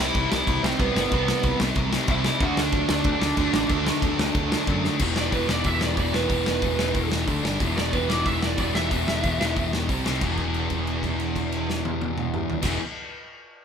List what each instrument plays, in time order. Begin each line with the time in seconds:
Already playing: distorted electric guitar C3 G3 C4 E4, lead electric guitar E5
0.00 picked electric bass C2, lead electric guitar E4
0.15 picked electric bass C2, kick, crash
0.30 picked electric bass C2, lead electric guitar E4 E5, snare
0.47 picked electric bass C2, kick, crash
0.63 picked electric bass C2, distorted electric guitar C3 G3 C4, lead electric guitar C4 C5, snare
0.79 picked electric bass C2, distorted electric guitar C3 G3 C4, lead electric guitar B3 B4, kick, crash
0.94 picked electric bass G1, lead electric guitar B3 B4, snare
1.11 picked electric bass C2, distorted electric guitar C3 G3 C4, kick, crash
1.15 distorted electric guitar E4
1.28 snare
1.43 picked electric bass C2, kick, crash
1.60 picked electric bass C2, snare
1.75 picked electric bass C2, kick, crash
1.91 distorted electric guitar C3 G3 C4, snare
2.07 picked electric bass C2, distorted electric guitar C3 G3 C4, lead electric guitar E4 E5, kick, crash
2.24 snare
2.40 picked electric bass D2, distorted electric guitar D3 F#3 A3 D4, lead electric guitar F#4 F#5, kick, crash
2.44 distorted electric guitar D4
2.57 picked electric bass D2, lead electric guitar D4 D5, snare
2.72 picked electric bass D2, kick, crash
2.89 picked electric bass D2, lead electric guitar D4 D5, snare
3.04 picked electric bass D2, kick, crash
3.20 picked electric bass D2, distorted electric guitar D3 A3 D4, snare
3.36 picked electric bass D2, distorted electric guitar D3 A3 D4, kick, crash
3.53 picked electric bass A1, snare
3.68 picked electric bass D2, distorted electric guitar D3 F#3 A3 D4, kick, crash
3.87 snare
4.02 picked electric bass D2, kick, crash
4.19 picked electric bass D2, snare
4.35 picked electric bass D2, kick, crash
4.50 distorted electric guitar D3 A3 D4, snare
4.67 picked electric bass F#2, distorted electric guitar D3 A3 D4, kick, crash
4.84 snare
4.99 picked electric bass E1, distorted electric guitar E2 B2 E3 B3 E4 G4, kick, crash
5.16 picked electric bass E1, lead electric guitar D5, snare
5.31 picked electric bass E1, distorted electric guitar E2 B2 E3 B3 E4 G4, lead electric guitar B4, kick, open hi-hat
5.48 picked electric bass E1, distorted electric guitar E2 B2 E3 B3 E4 G4, lead electric guitar D5, snare
5.64 picked electric bass E1, distorted electric guitar E2 B2 E3 B3 E4 G4, lead electric guitar E5, kick, open hi-hat
5.81 picked electric bass E1, lead electric guitar D5, snare
5.96 picked electric bass E1, distorted electric guitar E2 B2 E3 B3 E4 G4, lead electric guitar D5, kick, open hi-hat
6.13 picked electric bass E1, distorted electric guitar E2 B2 E3 B3 E4 G4, lead electric guitar B4, snare
6.28 picked electric bass E1, distorted electric guitar E2 B2 E3 B3 E4 G4, kick, open hi-hat
6.46 picked electric bass E1, snare
6.61 picked electric bass E1, distorted electric guitar E2 B2 E3 B3 E4 G4, kick, open hi-hat
6.78 picked electric bass E1, distorted electric guitar E2 B2 E3 B3 E4 G4, snare
6.93 picked electric bass E1, distorted electric guitar E2 B2 E3 B3 E4 G4, kick, open hi-hat
7.11 picked electric bass E1, snare
7.26 picked electric bass D2, distorted electric guitar D3 A3 D4 A4, kick, open hi-hat
7.42 picked electric bass G1, distorted electric guitar G2 D3 G3 D4 G4 D5, snare
7.59 picked electric bass E1, distorted electric guitar E2 B2 E3 B3 E4 G4, kick, open hi-hat
7.76 picked electric bass E1, lead electric guitar D5, snare
7.91 picked electric bass E1, distorted electric guitar E2 B2 E3 B3 E4 G4, lead electric guitar B4, kick, open hi-hat
8.08 picked electric bass E1, distorted electric guitar E2 B2 E3 B3 E4 G4, lead electric guitar D5, snare
8.24 picked electric bass E1, distorted electric guitar E2 B2 E3 B3 E4 G4, lead electric guitar E5, kick, open hi-hat
8.42 picked electric bass E1, lead electric guitar D5, snare
8.57 picked electric bass E1, distorted electric guitar E2 B2 E3 B3 E4 G4, lead electric guitar D5, kick, open hi-hat
8.74 picked electric bass E1, distorted electric guitar E2 B2 E3 B3 E4 G4, lead electric guitar E5, snare
8.91 picked electric bass E1, distorted electric guitar E2 B2 E3 B3 E4 G4, kick, open hi-hat
9.08 picked electric bass E1, snare
9.23 picked electric bass E1, distorted electric guitar E2 B2 E3 B3 E4 G4, kick, open hi-hat
9.39 picked electric bass E1, distorted electric guitar E2 B2 E3 B3 E4 G4, snare
9.56 picked electric bass E1, distorted electric guitar E2 B2 E3 B3 E4 G4, kick, open hi-hat
9.73 picked electric bass E1, snare
9.88 picked electric bass C2, distorted electric guitar C3 G3 C4 G4, kick, open hi-hat
10.04 picked electric bass C2, distorted electric guitar C3 G3 C4 G4, snare
10.20 picked electric bass E1, distorted electric guitar E2 B2 E3 B3 E4, kick, crash
10.24 distorted electric guitar E3 G#4
10.37 kick, crash
10.54 crash
10.70 kick, crash
10.87 crash
11.03 kick, crash
11.20 crash
11.36 kick, crash
11.52 crash
11.70 snare
11.85 high tom
12.01 high tom
12.18 mid tom
12.34 mid tom
12.50 floor tom
12.62 picked electric bass E1, distorted electric guitar E2 B2 E3 B3 E4, kick, snare, crash
12.66 distorted electric guitar E3 G#4